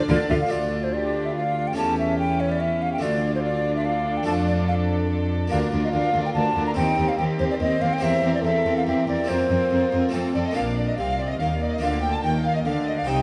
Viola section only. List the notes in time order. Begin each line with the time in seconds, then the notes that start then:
0.09 F4
0.30 F4
0.51 D4
1.77 C#4
3.03 D4
5.51 D4
5.73 D4
5.94 D4
6.15 D4
6.36 D4
6.57 D4
6.78 C4
6.99 C4
7.19 C4
7.40 C4
7.61 C4
7.82 C4
8.03 C4
8.24 C4
8.45 C4
8.66 C4
8.87 C4
9.08 C4
9.29 C4
9.50 C4
9.72 C4
9.93 C4
10.14 C4
10.35 C4
10.56 D4
10.98 C4
11.40 A#3
12.24 A#3
12.65 D4
13.08 D#4